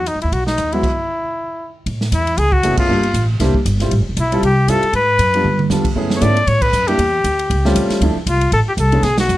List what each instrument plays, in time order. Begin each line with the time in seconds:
Already playing: upright bass E2
0.06 trumpet D#4, hi-hat pedal, ride
0.15 upright bass F#2
0.22 upright bass D#2, trumpet E4, ride
0.32 upright bass B1, trumpet F#4, kick, ride
0.46 trumpet D#4, snare
0.58 upright bass D#2, cross-stick, hi-hat pedal, ride
0.72 grand piano F#3 G#3 B3 F#4, trumpet E4, ride
0.83 kick, crash
1.86 upright bass A2, kick, ride
2.01 snare
2.12 upright bass E2, trumpet E4, kick, hi-hat pedal, ride
2.27 ride
2.37 upright bass C#2, trumpet G#4, kick, ride
2.52 trumpet F#4, kick
2.63 upright bass F#1, grand piano A3 B3 C#4 E4 G#4, hi-hat pedal, ride
2.77 trumpet F4, muted upright bass stroke, kick, crash
2.89 upright bass G1, grand piano G3 A#3 D4 F4 A4
3.03 ride
3.14 upright bass A1, kick, hi-hat pedal, ride
3.40 upright bass C2, grand piano G3 A#3 D4 E4 C5, kick, snare, ride
3.54 muted upright bass stroke, kick
3.65 upright bass G1, kick, hi-hat pedal, ride
3.80 grand piano G3 C4 E4 F4 C5, snare, ride
3.91 upright bass A1, kick, ride
3.99 upright bass F1
4.09 upright bass E1
4.17 upright bass B1, trumpet E4, kick, hi-hat pedal, ride
4.32 grand piano G3 C4 E4 F4 A4, ride
4.42 upright bass C2, trumpet G4, kick, ride
4.68 upright bass G2, grand piano G3 C4 E4 F4 A4, trumpet A4, kick, hi-hat pedal, ride
4.83 muted upright bass stroke, ride
4.93 upright bass G#2, trumpet B4, kick, ride
5.19 upright bass F#2, kick, hi-hat pedal, ride
5.34 grand piano G3 B3 D4 F4 A4, ride
5.44 upright bass G2, high tom
5.59 high tom
5.70 upright bass E2, grand piano G3 B3 D4 F4 A4, snare, hi-hat pedal
5.85 kick, crash
5.96 upright bass F#2, grand piano A3 B3 C#4 E4 G#4, kick
6.10 snare
6.16 trumpet C#5
6.21 upright bass G#2, grand piano A3 B3 C#4 E4 A4, trumpet D5, kick, hi-hat pedal, ride
6.37 ride
6.47 upright bass A2, trumpet C#5, kick, ride
6.62 trumpet B4, kick, crash
6.73 upright bass F#2, hi-hat pedal
6.87 grand piano G3 A#3 D4 E4 G4, trumpet G4, ride
6.98 upright bass E2, kick, ride
7.24 upright bass D2, kick, hi-hat pedal, ride
7.39 ride
7.50 upright bass C#2, kick, ride
7.65 grand piano G3 A3 C4 C#4 F4, snare
7.75 upright bass D#2, kick, hi-hat pedal, ride
7.90 muted upright bass stroke, snare, ride
8.01 upright bass D2, grand piano F3 A3 C4 D4 E4, kick, ride
8.16 muted upright bass stroke
8.26 upright bass C2, trumpet F4, kick, hi-hat pedal, ride
8.41 ride
8.52 upright bass A1, trumpet A4, kick, ride
8.67 trumpet G4, muted upright bass stroke
8.77 upright bass C2, trumpet A4, kick, hi-hat pedal, ride
8.92 grand piano D3 A3 B3 C#4 G#4, ride
9.03 upright bass B1, trumpet G#4, kick, snare, ride
9.18 trumpet F#4, snare, ride
9.29 upright bass F#2, hi-hat pedal